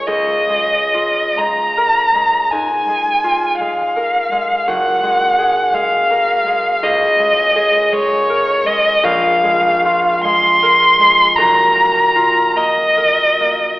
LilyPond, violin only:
\new Staff \with { instrumentName = "Violin" } { \time 12/8 \key ges \lydian \tempo 4. = 54 ees''4. bes''4. aes''4. f''4. | ges''4. f''4. ees''4. des''4 ees''8 | f''4. c'''4. bes''4. ees''4. | }